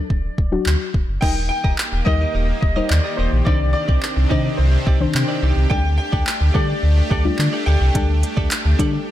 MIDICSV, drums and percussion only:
0, 0, Header, 1, 2, 480
1, 0, Start_track
1, 0, Tempo, 560748
1, 1047, Time_signature, 4, 2, 24, 8
1, 7799, End_track
2, 0, Start_track
2, 0, Title_t, "Drums"
2, 87, Note_on_c, 9, 36, 91
2, 172, Note_off_c, 9, 36, 0
2, 327, Note_on_c, 9, 36, 88
2, 413, Note_off_c, 9, 36, 0
2, 566, Note_on_c, 9, 39, 115
2, 651, Note_off_c, 9, 39, 0
2, 807, Note_on_c, 9, 36, 90
2, 893, Note_off_c, 9, 36, 0
2, 1047, Note_on_c, 9, 36, 111
2, 1047, Note_on_c, 9, 49, 88
2, 1133, Note_off_c, 9, 36, 0
2, 1133, Note_off_c, 9, 49, 0
2, 1408, Note_on_c, 9, 36, 86
2, 1493, Note_off_c, 9, 36, 0
2, 1527, Note_on_c, 9, 39, 107
2, 1613, Note_off_c, 9, 39, 0
2, 1769, Note_on_c, 9, 36, 81
2, 1854, Note_off_c, 9, 36, 0
2, 2247, Note_on_c, 9, 36, 90
2, 2333, Note_off_c, 9, 36, 0
2, 2485, Note_on_c, 9, 39, 109
2, 2570, Note_off_c, 9, 39, 0
2, 2967, Note_on_c, 9, 36, 113
2, 3052, Note_off_c, 9, 36, 0
2, 3327, Note_on_c, 9, 36, 88
2, 3413, Note_off_c, 9, 36, 0
2, 3447, Note_on_c, 9, 39, 107
2, 3532, Note_off_c, 9, 39, 0
2, 3688, Note_on_c, 9, 36, 80
2, 3774, Note_off_c, 9, 36, 0
2, 4167, Note_on_c, 9, 36, 89
2, 4252, Note_off_c, 9, 36, 0
2, 4405, Note_on_c, 9, 39, 113
2, 4491, Note_off_c, 9, 39, 0
2, 4887, Note_on_c, 9, 36, 117
2, 4973, Note_off_c, 9, 36, 0
2, 5247, Note_on_c, 9, 36, 92
2, 5333, Note_off_c, 9, 36, 0
2, 5367, Note_on_c, 9, 39, 107
2, 5453, Note_off_c, 9, 39, 0
2, 5608, Note_on_c, 9, 36, 79
2, 5694, Note_off_c, 9, 36, 0
2, 6087, Note_on_c, 9, 36, 88
2, 6172, Note_off_c, 9, 36, 0
2, 6324, Note_on_c, 9, 39, 119
2, 6410, Note_off_c, 9, 39, 0
2, 6806, Note_on_c, 9, 36, 112
2, 6806, Note_on_c, 9, 42, 79
2, 6891, Note_off_c, 9, 42, 0
2, 6892, Note_off_c, 9, 36, 0
2, 7047, Note_on_c, 9, 42, 63
2, 7133, Note_off_c, 9, 42, 0
2, 7167, Note_on_c, 9, 36, 91
2, 7252, Note_off_c, 9, 36, 0
2, 7286, Note_on_c, 9, 39, 112
2, 7287, Note_on_c, 9, 42, 93
2, 7372, Note_off_c, 9, 39, 0
2, 7372, Note_off_c, 9, 42, 0
2, 7528, Note_on_c, 9, 36, 85
2, 7528, Note_on_c, 9, 42, 82
2, 7613, Note_off_c, 9, 36, 0
2, 7614, Note_off_c, 9, 42, 0
2, 7799, End_track
0, 0, End_of_file